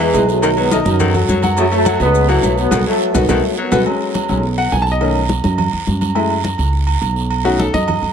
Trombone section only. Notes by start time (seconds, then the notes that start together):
0.00 E3 G#3
0.28 F#3 A3
0.57 G#3 B3
0.72 F#3 A3
0.87 D#3 F#3
1.58 F#3 A3
1.72 F#3 A3
2.01 G#3 B3
2.29 F#3 A3
2.58 F#3 B3
2.87 F#3 A3
3.16 D#3 F#3
3.30 F#3 A3
3.59 F#3 B3